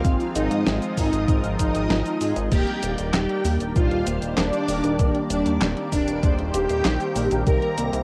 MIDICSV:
0, 0, Header, 1, 8, 480
1, 0, Start_track
1, 0, Tempo, 618557
1, 36, Time_signature, 4, 2, 24, 8
1, 6232, End_track
2, 0, Start_track
2, 0, Title_t, "String machine"
2, 0, Program_c, 0, 50
2, 0, Note_on_c, 0, 77, 102
2, 181, Note_off_c, 0, 77, 0
2, 276, Note_on_c, 0, 75, 94
2, 544, Note_off_c, 0, 75, 0
2, 757, Note_on_c, 0, 75, 94
2, 1024, Note_off_c, 0, 75, 0
2, 1236, Note_on_c, 0, 75, 106
2, 1860, Note_off_c, 0, 75, 0
2, 1955, Note_on_c, 0, 79, 105
2, 2224, Note_off_c, 0, 79, 0
2, 2435, Note_on_c, 0, 79, 93
2, 2704, Note_off_c, 0, 79, 0
2, 2914, Note_on_c, 0, 77, 92
2, 3183, Note_off_c, 0, 77, 0
2, 3395, Note_on_c, 0, 74, 106
2, 4019, Note_off_c, 0, 74, 0
2, 4114, Note_on_c, 0, 74, 92
2, 4383, Note_off_c, 0, 74, 0
2, 4596, Note_on_c, 0, 74, 97
2, 4864, Note_off_c, 0, 74, 0
2, 5076, Note_on_c, 0, 79, 102
2, 5700, Note_off_c, 0, 79, 0
2, 5797, Note_on_c, 0, 82, 105
2, 6065, Note_off_c, 0, 82, 0
2, 6232, End_track
3, 0, Start_track
3, 0, Title_t, "Supersaw synth"
3, 0, Program_c, 1, 81
3, 0, Note_on_c, 1, 65, 107
3, 180, Note_off_c, 1, 65, 0
3, 275, Note_on_c, 1, 63, 93
3, 543, Note_off_c, 1, 63, 0
3, 755, Note_on_c, 1, 63, 93
3, 1023, Note_off_c, 1, 63, 0
3, 1236, Note_on_c, 1, 63, 105
3, 1860, Note_off_c, 1, 63, 0
3, 1956, Note_on_c, 1, 67, 107
3, 2224, Note_off_c, 1, 67, 0
3, 2435, Note_on_c, 1, 67, 91
3, 2704, Note_off_c, 1, 67, 0
3, 2916, Note_on_c, 1, 65, 95
3, 3184, Note_off_c, 1, 65, 0
3, 3395, Note_on_c, 1, 62, 106
3, 4020, Note_off_c, 1, 62, 0
3, 4115, Note_on_c, 1, 62, 94
3, 4384, Note_off_c, 1, 62, 0
3, 4596, Note_on_c, 1, 62, 96
3, 4864, Note_off_c, 1, 62, 0
3, 5076, Note_on_c, 1, 67, 107
3, 5700, Note_off_c, 1, 67, 0
3, 5796, Note_on_c, 1, 70, 104
3, 6064, Note_off_c, 1, 70, 0
3, 6232, End_track
4, 0, Start_track
4, 0, Title_t, "Synth arpeggio sound"
4, 0, Program_c, 2, 84
4, 37, Note_on_c, 2, 60, 81
4, 186, Note_off_c, 2, 60, 0
4, 276, Note_on_c, 2, 75, 101
4, 501, Note_off_c, 2, 75, 0
4, 516, Note_on_c, 2, 60, 98
4, 666, Note_off_c, 2, 60, 0
4, 756, Note_on_c, 2, 65, 77
4, 846, Note_off_c, 2, 65, 0
4, 997, Note_on_c, 2, 60, 100
4, 1086, Note_off_c, 2, 60, 0
4, 1476, Note_on_c, 2, 75, 80
4, 1626, Note_off_c, 2, 75, 0
4, 1717, Note_on_c, 2, 65, 76
4, 1806, Note_off_c, 2, 65, 0
4, 1957, Note_on_c, 2, 58, 102
4, 2046, Note_off_c, 2, 58, 0
4, 2436, Note_on_c, 2, 63, 102
4, 2526, Note_off_c, 2, 63, 0
4, 2676, Note_on_c, 2, 58, 104
4, 2766, Note_off_c, 2, 58, 0
4, 2916, Note_on_c, 2, 67, 80
4, 3006, Note_off_c, 2, 67, 0
4, 3156, Note_on_c, 2, 58, 77
4, 3381, Note_off_c, 2, 58, 0
4, 3395, Note_on_c, 2, 70, 79
4, 3545, Note_off_c, 2, 70, 0
4, 3875, Note_on_c, 2, 58, 84
4, 4026, Note_off_c, 2, 58, 0
4, 4116, Note_on_c, 2, 74, 107
4, 4341, Note_off_c, 2, 74, 0
4, 4356, Note_on_c, 2, 58, 101
4, 4506, Note_off_c, 2, 58, 0
4, 4596, Note_on_c, 2, 63, 76
4, 4686, Note_off_c, 2, 63, 0
4, 4836, Note_on_c, 2, 58, 103
4, 4926, Note_off_c, 2, 58, 0
4, 5317, Note_on_c, 2, 63, 105
4, 5406, Note_off_c, 2, 63, 0
4, 5557, Note_on_c, 2, 58, 103
4, 5646, Note_off_c, 2, 58, 0
4, 5796, Note_on_c, 2, 67, 82
4, 5886, Note_off_c, 2, 67, 0
4, 6035, Note_on_c, 2, 58, 80
4, 6232, Note_off_c, 2, 58, 0
4, 6232, End_track
5, 0, Start_track
5, 0, Title_t, "Analog polysynth"
5, 0, Program_c, 3, 90
5, 35, Note_on_c, 3, 53, 82
5, 35, Note_on_c, 3, 56, 75
5, 35, Note_on_c, 3, 60, 73
5, 35, Note_on_c, 3, 63, 74
5, 35, Note_on_c, 3, 68, 88
5, 967, Note_off_c, 3, 53, 0
5, 967, Note_off_c, 3, 56, 0
5, 967, Note_off_c, 3, 60, 0
5, 967, Note_off_c, 3, 63, 0
5, 967, Note_off_c, 3, 68, 0
5, 995, Note_on_c, 3, 53, 92
5, 995, Note_on_c, 3, 56, 87
5, 995, Note_on_c, 3, 60, 84
5, 995, Note_on_c, 3, 63, 86
5, 995, Note_on_c, 3, 70, 103
5, 1687, Note_off_c, 3, 53, 0
5, 1687, Note_off_c, 3, 56, 0
5, 1687, Note_off_c, 3, 60, 0
5, 1687, Note_off_c, 3, 63, 0
5, 1687, Note_off_c, 3, 70, 0
5, 1716, Note_on_c, 3, 53, 89
5, 1716, Note_on_c, 3, 56, 81
5, 1716, Note_on_c, 3, 60, 82
5, 1716, Note_on_c, 3, 63, 82
5, 1716, Note_on_c, 3, 68, 102
5, 1927, Note_off_c, 3, 53, 0
5, 1927, Note_off_c, 3, 56, 0
5, 1927, Note_off_c, 3, 60, 0
5, 1927, Note_off_c, 3, 63, 0
5, 1927, Note_off_c, 3, 68, 0
5, 1956, Note_on_c, 3, 55, 78
5, 1956, Note_on_c, 3, 58, 72
5, 1956, Note_on_c, 3, 62, 69
5, 1956, Note_on_c, 3, 63, 71
5, 1956, Note_on_c, 3, 70, 87
5, 2887, Note_off_c, 3, 55, 0
5, 2887, Note_off_c, 3, 58, 0
5, 2887, Note_off_c, 3, 62, 0
5, 2887, Note_off_c, 3, 63, 0
5, 2887, Note_off_c, 3, 70, 0
5, 2915, Note_on_c, 3, 55, 96
5, 2915, Note_on_c, 3, 58, 86
5, 2915, Note_on_c, 3, 62, 88
5, 2915, Note_on_c, 3, 63, 87
5, 2915, Note_on_c, 3, 72, 100
5, 3607, Note_off_c, 3, 55, 0
5, 3607, Note_off_c, 3, 58, 0
5, 3607, Note_off_c, 3, 62, 0
5, 3607, Note_off_c, 3, 63, 0
5, 3607, Note_off_c, 3, 72, 0
5, 3635, Note_on_c, 3, 55, 91
5, 3635, Note_on_c, 3, 58, 85
5, 3635, Note_on_c, 3, 62, 86
5, 3635, Note_on_c, 3, 63, 85
5, 3635, Note_on_c, 3, 70, 102
5, 3847, Note_off_c, 3, 55, 0
5, 3847, Note_off_c, 3, 58, 0
5, 3847, Note_off_c, 3, 62, 0
5, 3847, Note_off_c, 3, 63, 0
5, 3847, Note_off_c, 3, 70, 0
5, 3875, Note_on_c, 3, 51, 74
5, 3875, Note_on_c, 3, 55, 81
5, 3875, Note_on_c, 3, 58, 70
5, 3875, Note_on_c, 3, 62, 75
5, 3875, Note_on_c, 3, 70, 89
5, 4807, Note_off_c, 3, 51, 0
5, 4807, Note_off_c, 3, 55, 0
5, 4807, Note_off_c, 3, 58, 0
5, 4807, Note_off_c, 3, 62, 0
5, 4807, Note_off_c, 3, 70, 0
5, 4835, Note_on_c, 3, 55, 95
5, 4835, Note_on_c, 3, 58, 84
5, 4835, Note_on_c, 3, 62, 86
5, 4835, Note_on_c, 3, 63, 86
5, 4835, Note_on_c, 3, 72, 103
5, 5527, Note_off_c, 3, 55, 0
5, 5527, Note_off_c, 3, 58, 0
5, 5527, Note_off_c, 3, 62, 0
5, 5527, Note_off_c, 3, 63, 0
5, 5527, Note_off_c, 3, 72, 0
5, 5555, Note_on_c, 3, 55, 92
5, 5555, Note_on_c, 3, 58, 87
5, 5555, Note_on_c, 3, 62, 85
5, 5555, Note_on_c, 3, 63, 82
5, 5555, Note_on_c, 3, 70, 100
5, 5767, Note_off_c, 3, 55, 0
5, 5767, Note_off_c, 3, 58, 0
5, 5767, Note_off_c, 3, 62, 0
5, 5767, Note_off_c, 3, 63, 0
5, 5767, Note_off_c, 3, 70, 0
5, 5795, Note_on_c, 3, 58, 74
5, 5795, Note_on_c, 3, 63, 73
5, 5795, Note_on_c, 3, 70, 88
5, 5796, Note_on_c, 3, 55, 79
5, 5796, Note_on_c, 3, 60, 72
5, 6232, Note_off_c, 3, 55, 0
5, 6232, Note_off_c, 3, 58, 0
5, 6232, Note_off_c, 3, 60, 0
5, 6232, Note_off_c, 3, 63, 0
5, 6232, Note_off_c, 3, 70, 0
5, 6232, End_track
6, 0, Start_track
6, 0, Title_t, "Analog synth pad"
6, 0, Program_c, 4, 89
6, 0, Note_on_c, 4, 51, 80
6, 0, Note_on_c, 4, 60, 74
6, 36, Note_on_c, 4, 56, 77
6, 37, Note_on_c, 4, 65, 90
6, 38, Note_on_c, 4, 53, 79
6, 1925, Note_off_c, 4, 51, 0
6, 1926, Note_off_c, 4, 60, 0
6, 1937, Note_off_c, 4, 56, 0
6, 1937, Note_off_c, 4, 65, 0
6, 1938, Note_off_c, 4, 53, 0
6, 1954, Note_on_c, 4, 51, 81
6, 1954, Note_on_c, 4, 55, 76
6, 1954, Note_on_c, 4, 67, 94
6, 1954, Note_on_c, 4, 74, 77
6, 1955, Note_on_c, 4, 58, 77
6, 3856, Note_off_c, 4, 74, 0
6, 3876, Note_on_c, 4, 60, 79
6, 6232, Note_off_c, 4, 51, 0
6, 6232, Note_off_c, 4, 55, 0
6, 6232, Note_off_c, 4, 58, 0
6, 6232, Note_off_c, 4, 60, 0
6, 6232, Note_off_c, 4, 67, 0
6, 6232, End_track
7, 0, Start_track
7, 0, Title_t, "Analog synth bass"
7, 0, Program_c, 5, 38
7, 36, Note_on_c, 5, 32, 100
7, 138, Note_off_c, 5, 32, 0
7, 276, Note_on_c, 5, 32, 94
7, 378, Note_off_c, 5, 32, 0
7, 396, Note_on_c, 5, 44, 84
7, 498, Note_off_c, 5, 44, 0
7, 516, Note_on_c, 5, 32, 102
7, 618, Note_off_c, 5, 32, 0
7, 756, Note_on_c, 5, 32, 92
7, 858, Note_off_c, 5, 32, 0
7, 877, Note_on_c, 5, 32, 81
7, 979, Note_off_c, 5, 32, 0
7, 996, Note_on_c, 5, 32, 102
7, 1098, Note_off_c, 5, 32, 0
7, 1117, Note_on_c, 5, 32, 78
7, 1218, Note_off_c, 5, 32, 0
7, 1236, Note_on_c, 5, 32, 91
7, 1338, Note_off_c, 5, 32, 0
7, 1357, Note_on_c, 5, 32, 81
7, 1458, Note_off_c, 5, 32, 0
7, 1476, Note_on_c, 5, 32, 107
7, 1578, Note_off_c, 5, 32, 0
7, 1715, Note_on_c, 5, 44, 94
7, 1818, Note_off_c, 5, 44, 0
7, 1837, Note_on_c, 5, 32, 82
7, 1938, Note_off_c, 5, 32, 0
7, 1956, Note_on_c, 5, 27, 107
7, 2058, Note_off_c, 5, 27, 0
7, 2196, Note_on_c, 5, 27, 98
7, 2298, Note_off_c, 5, 27, 0
7, 2315, Note_on_c, 5, 27, 82
7, 2418, Note_off_c, 5, 27, 0
7, 2436, Note_on_c, 5, 27, 104
7, 2538, Note_off_c, 5, 27, 0
7, 2675, Note_on_c, 5, 39, 96
7, 2778, Note_off_c, 5, 39, 0
7, 2795, Note_on_c, 5, 27, 80
7, 2897, Note_off_c, 5, 27, 0
7, 2916, Note_on_c, 5, 34, 102
7, 3018, Note_off_c, 5, 34, 0
7, 3034, Note_on_c, 5, 27, 80
7, 3137, Note_off_c, 5, 27, 0
7, 3155, Note_on_c, 5, 27, 94
7, 3258, Note_off_c, 5, 27, 0
7, 3276, Note_on_c, 5, 27, 82
7, 3378, Note_off_c, 5, 27, 0
7, 3396, Note_on_c, 5, 27, 104
7, 3498, Note_off_c, 5, 27, 0
7, 3635, Note_on_c, 5, 27, 93
7, 3737, Note_off_c, 5, 27, 0
7, 3755, Note_on_c, 5, 27, 84
7, 3858, Note_off_c, 5, 27, 0
7, 3876, Note_on_c, 5, 27, 99
7, 3978, Note_off_c, 5, 27, 0
7, 4115, Note_on_c, 5, 27, 93
7, 4218, Note_off_c, 5, 27, 0
7, 4235, Note_on_c, 5, 39, 83
7, 4338, Note_off_c, 5, 39, 0
7, 4355, Note_on_c, 5, 27, 101
7, 4458, Note_off_c, 5, 27, 0
7, 4596, Note_on_c, 5, 27, 92
7, 4698, Note_off_c, 5, 27, 0
7, 4716, Note_on_c, 5, 27, 82
7, 4818, Note_off_c, 5, 27, 0
7, 4835, Note_on_c, 5, 27, 103
7, 4938, Note_off_c, 5, 27, 0
7, 4956, Note_on_c, 5, 27, 81
7, 5058, Note_off_c, 5, 27, 0
7, 5076, Note_on_c, 5, 27, 97
7, 5178, Note_off_c, 5, 27, 0
7, 5196, Note_on_c, 5, 27, 80
7, 5298, Note_off_c, 5, 27, 0
7, 5316, Note_on_c, 5, 34, 108
7, 5418, Note_off_c, 5, 34, 0
7, 5555, Note_on_c, 5, 34, 93
7, 5658, Note_off_c, 5, 34, 0
7, 5676, Note_on_c, 5, 34, 82
7, 5778, Note_off_c, 5, 34, 0
7, 5796, Note_on_c, 5, 36, 104
7, 5898, Note_off_c, 5, 36, 0
7, 6035, Note_on_c, 5, 36, 94
7, 6138, Note_off_c, 5, 36, 0
7, 6156, Note_on_c, 5, 36, 83
7, 6232, Note_off_c, 5, 36, 0
7, 6232, End_track
8, 0, Start_track
8, 0, Title_t, "Drums"
8, 36, Note_on_c, 9, 36, 116
8, 36, Note_on_c, 9, 42, 54
8, 36, Note_on_c, 9, 69, 40
8, 114, Note_off_c, 9, 36, 0
8, 114, Note_off_c, 9, 42, 0
8, 114, Note_off_c, 9, 69, 0
8, 156, Note_on_c, 9, 42, 27
8, 156, Note_on_c, 9, 69, 27
8, 233, Note_off_c, 9, 42, 0
8, 233, Note_off_c, 9, 69, 0
8, 276, Note_on_c, 9, 42, 98
8, 276, Note_on_c, 9, 69, 69
8, 353, Note_off_c, 9, 42, 0
8, 353, Note_off_c, 9, 69, 0
8, 396, Note_on_c, 9, 42, 57
8, 396, Note_on_c, 9, 69, 30
8, 474, Note_off_c, 9, 42, 0
8, 474, Note_off_c, 9, 69, 0
8, 516, Note_on_c, 9, 38, 118
8, 516, Note_on_c, 9, 42, 53
8, 516, Note_on_c, 9, 69, 40
8, 594, Note_off_c, 9, 38, 0
8, 594, Note_off_c, 9, 42, 0
8, 594, Note_off_c, 9, 69, 0
8, 636, Note_on_c, 9, 42, 28
8, 636, Note_on_c, 9, 69, 29
8, 714, Note_off_c, 9, 42, 0
8, 714, Note_off_c, 9, 69, 0
8, 756, Note_on_c, 9, 36, 62
8, 756, Note_on_c, 9, 46, 82
8, 756, Note_on_c, 9, 69, 67
8, 833, Note_off_c, 9, 46, 0
8, 833, Note_off_c, 9, 69, 0
8, 834, Note_off_c, 9, 36, 0
8, 877, Note_on_c, 9, 42, 54
8, 877, Note_on_c, 9, 69, 30
8, 954, Note_off_c, 9, 42, 0
8, 954, Note_off_c, 9, 69, 0
8, 996, Note_on_c, 9, 36, 121
8, 996, Note_on_c, 9, 42, 54
8, 996, Note_on_c, 9, 69, 41
8, 1074, Note_off_c, 9, 36, 0
8, 1074, Note_off_c, 9, 42, 0
8, 1074, Note_off_c, 9, 69, 0
8, 1116, Note_on_c, 9, 42, 26
8, 1116, Note_on_c, 9, 69, 26
8, 1194, Note_off_c, 9, 42, 0
8, 1194, Note_off_c, 9, 69, 0
8, 1236, Note_on_c, 9, 36, 63
8, 1237, Note_on_c, 9, 42, 97
8, 1237, Note_on_c, 9, 69, 70
8, 1313, Note_off_c, 9, 36, 0
8, 1314, Note_off_c, 9, 42, 0
8, 1314, Note_off_c, 9, 69, 0
8, 1356, Note_on_c, 9, 42, 55
8, 1356, Note_on_c, 9, 69, 29
8, 1434, Note_off_c, 9, 42, 0
8, 1434, Note_off_c, 9, 69, 0
8, 1477, Note_on_c, 9, 38, 118
8, 1477, Note_on_c, 9, 42, 54
8, 1477, Note_on_c, 9, 69, 39
8, 1554, Note_off_c, 9, 38, 0
8, 1554, Note_off_c, 9, 42, 0
8, 1554, Note_off_c, 9, 69, 0
8, 1597, Note_on_c, 9, 42, 26
8, 1597, Note_on_c, 9, 69, 27
8, 1675, Note_off_c, 9, 42, 0
8, 1675, Note_off_c, 9, 69, 0
8, 1716, Note_on_c, 9, 46, 79
8, 1716, Note_on_c, 9, 69, 68
8, 1794, Note_off_c, 9, 46, 0
8, 1794, Note_off_c, 9, 69, 0
8, 1836, Note_on_c, 9, 42, 55
8, 1836, Note_on_c, 9, 69, 30
8, 1913, Note_off_c, 9, 42, 0
8, 1913, Note_off_c, 9, 69, 0
8, 1955, Note_on_c, 9, 42, 57
8, 1955, Note_on_c, 9, 49, 78
8, 1955, Note_on_c, 9, 69, 39
8, 1956, Note_on_c, 9, 36, 119
8, 2033, Note_off_c, 9, 36, 0
8, 2033, Note_off_c, 9, 42, 0
8, 2033, Note_off_c, 9, 49, 0
8, 2033, Note_off_c, 9, 69, 0
8, 2076, Note_on_c, 9, 42, 28
8, 2154, Note_off_c, 9, 42, 0
8, 2196, Note_on_c, 9, 42, 96
8, 2196, Note_on_c, 9, 69, 64
8, 2273, Note_off_c, 9, 42, 0
8, 2273, Note_off_c, 9, 69, 0
8, 2316, Note_on_c, 9, 42, 59
8, 2316, Note_on_c, 9, 69, 29
8, 2393, Note_off_c, 9, 42, 0
8, 2393, Note_off_c, 9, 69, 0
8, 2436, Note_on_c, 9, 38, 124
8, 2436, Note_on_c, 9, 39, 99
8, 2436, Note_on_c, 9, 42, 55
8, 2436, Note_on_c, 9, 69, 37
8, 2514, Note_off_c, 9, 38, 0
8, 2514, Note_off_c, 9, 39, 0
8, 2514, Note_off_c, 9, 42, 0
8, 2514, Note_off_c, 9, 69, 0
8, 2556, Note_on_c, 9, 42, 29
8, 2634, Note_off_c, 9, 42, 0
8, 2676, Note_on_c, 9, 46, 79
8, 2676, Note_on_c, 9, 69, 67
8, 2753, Note_off_c, 9, 46, 0
8, 2753, Note_off_c, 9, 69, 0
8, 2796, Note_on_c, 9, 42, 56
8, 2796, Note_on_c, 9, 69, 30
8, 2873, Note_off_c, 9, 42, 0
8, 2873, Note_off_c, 9, 69, 0
8, 2915, Note_on_c, 9, 42, 58
8, 2915, Note_on_c, 9, 69, 39
8, 2916, Note_on_c, 9, 36, 119
8, 2993, Note_off_c, 9, 36, 0
8, 2993, Note_off_c, 9, 42, 0
8, 2993, Note_off_c, 9, 69, 0
8, 3035, Note_on_c, 9, 42, 28
8, 3113, Note_off_c, 9, 42, 0
8, 3155, Note_on_c, 9, 42, 97
8, 3155, Note_on_c, 9, 69, 69
8, 3233, Note_off_c, 9, 42, 0
8, 3233, Note_off_c, 9, 69, 0
8, 3275, Note_on_c, 9, 42, 58
8, 3275, Note_on_c, 9, 69, 28
8, 3353, Note_off_c, 9, 42, 0
8, 3353, Note_off_c, 9, 69, 0
8, 3395, Note_on_c, 9, 38, 120
8, 3395, Note_on_c, 9, 39, 97
8, 3395, Note_on_c, 9, 42, 56
8, 3395, Note_on_c, 9, 69, 38
8, 3472, Note_off_c, 9, 38, 0
8, 3472, Note_off_c, 9, 39, 0
8, 3472, Note_off_c, 9, 42, 0
8, 3472, Note_off_c, 9, 69, 0
8, 3515, Note_on_c, 9, 42, 29
8, 3515, Note_on_c, 9, 69, 26
8, 3592, Note_off_c, 9, 42, 0
8, 3592, Note_off_c, 9, 69, 0
8, 3635, Note_on_c, 9, 46, 77
8, 3635, Note_on_c, 9, 69, 65
8, 3712, Note_off_c, 9, 46, 0
8, 3712, Note_off_c, 9, 69, 0
8, 3754, Note_on_c, 9, 42, 59
8, 3754, Note_on_c, 9, 69, 29
8, 3832, Note_off_c, 9, 42, 0
8, 3832, Note_off_c, 9, 69, 0
8, 3874, Note_on_c, 9, 42, 57
8, 3874, Note_on_c, 9, 69, 39
8, 3876, Note_on_c, 9, 36, 125
8, 3952, Note_off_c, 9, 42, 0
8, 3952, Note_off_c, 9, 69, 0
8, 3953, Note_off_c, 9, 36, 0
8, 3994, Note_on_c, 9, 42, 28
8, 4072, Note_off_c, 9, 42, 0
8, 4114, Note_on_c, 9, 42, 99
8, 4114, Note_on_c, 9, 69, 65
8, 4191, Note_off_c, 9, 42, 0
8, 4191, Note_off_c, 9, 69, 0
8, 4234, Note_on_c, 9, 42, 58
8, 4234, Note_on_c, 9, 69, 30
8, 4312, Note_off_c, 9, 42, 0
8, 4312, Note_off_c, 9, 69, 0
8, 4355, Note_on_c, 9, 38, 127
8, 4355, Note_on_c, 9, 39, 97
8, 4355, Note_on_c, 9, 42, 56
8, 4355, Note_on_c, 9, 69, 39
8, 4433, Note_off_c, 9, 38, 0
8, 4433, Note_off_c, 9, 39, 0
8, 4433, Note_off_c, 9, 42, 0
8, 4433, Note_off_c, 9, 69, 0
8, 4475, Note_on_c, 9, 42, 30
8, 4552, Note_off_c, 9, 42, 0
8, 4595, Note_on_c, 9, 46, 76
8, 4595, Note_on_c, 9, 69, 67
8, 4596, Note_on_c, 9, 36, 65
8, 4672, Note_off_c, 9, 46, 0
8, 4672, Note_off_c, 9, 69, 0
8, 4673, Note_off_c, 9, 36, 0
8, 4715, Note_on_c, 9, 42, 56
8, 4715, Note_on_c, 9, 69, 29
8, 4793, Note_off_c, 9, 42, 0
8, 4793, Note_off_c, 9, 69, 0
8, 4835, Note_on_c, 9, 42, 58
8, 4835, Note_on_c, 9, 69, 39
8, 4836, Note_on_c, 9, 36, 127
8, 4912, Note_off_c, 9, 42, 0
8, 4912, Note_off_c, 9, 69, 0
8, 4913, Note_off_c, 9, 36, 0
8, 4955, Note_on_c, 9, 42, 28
8, 5033, Note_off_c, 9, 42, 0
8, 5075, Note_on_c, 9, 42, 100
8, 5075, Note_on_c, 9, 69, 66
8, 5152, Note_off_c, 9, 42, 0
8, 5152, Note_off_c, 9, 69, 0
8, 5195, Note_on_c, 9, 42, 58
8, 5195, Note_on_c, 9, 69, 29
8, 5272, Note_off_c, 9, 42, 0
8, 5272, Note_off_c, 9, 69, 0
8, 5315, Note_on_c, 9, 38, 122
8, 5315, Note_on_c, 9, 39, 98
8, 5315, Note_on_c, 9, 42, 57
8, 5315, Note_on_c, 9, 69, 36
8, 5392, Note_off_c, 9, 38, 0
8, 5392, Note_off_c, 9, 39, 0
8, 5392, Note_off_c, 9, 42, 0
8, 5392, Note_off_c, 9, 69, 0
8, 5435, Note_on_c, 9, 42, 29
8, 5435, Note_on_c, 9, 69, 26
8, 5512, Note_off_c, 9, 42, 0
8, 5512, Note_off_c, 9, 69, 0
8, 5555, Note_on_c, 9, 46, 76
8, 5555, Note_on_c, 9, 69, 69
8, 5633, Note_off_c, 9, 46, 0
8, 5633, Note_off_c, 9, 69, 0
8, 5675, Note_on_c, 9, 42, 57
8, 5675, Note_on_c, 9, 69, 29
8, 5752, Note_off_c, 9, 42, 0
8, 5752, Note_off_c, 9, 69, 0
8, 5795, Note_on_c, 9, 42, 57
8, 5795, Note_on_c, 9, 69, 38
8, 5796, Note_on_c, 9, 36, 127
8, 5873, Note_off_c, 9, 36, 0
8, 5873, Note_off_c, 9, 42, 0
8, 5873, Note_off_c, 9, 69, 0
8, 5915, Note_on_c, 9, 42, 26
8, 5993, Note_off_c, 9, 42, 0
8, 6035, Note_on_c, 9, 42, 97
8, 6035, Note_on_c, 9, 69, 67
8, 6113, Note_off_c, 9, 42, 0
8, 6113, Note_off_c, 9, 69, 0
8, 6156, Note_on_c, 9, 42, 57
8, 6156, Note_on_c, 9, 69, 31
8, 6232, Note_off_c, 9, 42, 0
8, 6232, Note_off_c, 9, 69, 0
8, 6232, End_track
0, 0, End_of_file